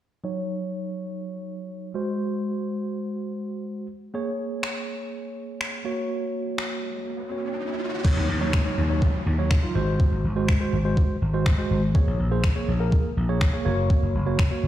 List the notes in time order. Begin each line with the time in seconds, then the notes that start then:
0.24 F#3 D#4 C#5
1.94 G#3 F#4 C5
4.14 A#3 G#4 C#5
4.63 finger snap
5.61 finger snap
5.85 A#3 F#4 C#5
6.10 riser
6.58 finger snap
7.31 A#3 F#4 C#5
8.04 F#3 D#4 C#5, kick, crash, downlifter
8.17 D#2
8.29 D#2
8.41 F#3 D#4 C#5
8.53 finger snap, kick
8.65 F#3 D#4 C#5
8.78 D#2
8.90 F#3 D#4 C#5
9.02 kick
9.26 D#2
9.38 F#3 D#4 C#5
9.51 finger snap, kick
9.63 F#3 D#4 F4
9.75 G#1 G#3 F#4 C5
10.00 kick
10.12 G#1
10.24 G#1
10.36 G#3 F#4 C5
10.48 finger snap, kick
10.60 G#3 F#4 C5
10.73 G#1
10.85 G#3 F#4 C5
10.97 kick
11.22 G#1
11.33 G#3 F#4 C5
11.46 finger snap, kick
11.58 G#3 F#4 C5
11.71 G#1
11.95 A#3 G#4 C#5, kick
12.07 A#1
12.19 A#1
12.31 A#3 G#4 C5
12.44 finger snap, kick
12.55 A#3 G#4 C#5
12.68 A#1
12.80 A#3 G#4 A#4
12.92 kick
13.17 A#1
13.29 A#3 G#4 C#5
13.41 finger snap, kick
13.53 A#3 G#4 C#5
13.65 F#1 A#3 F#4 C#5
13.90 kick
14.03 F#1
14.15 F#1
14.26 A#3 F#4 C#5
14.39 finger snap, kick
14.51 A#3 F#4 C#5
14.63 F#1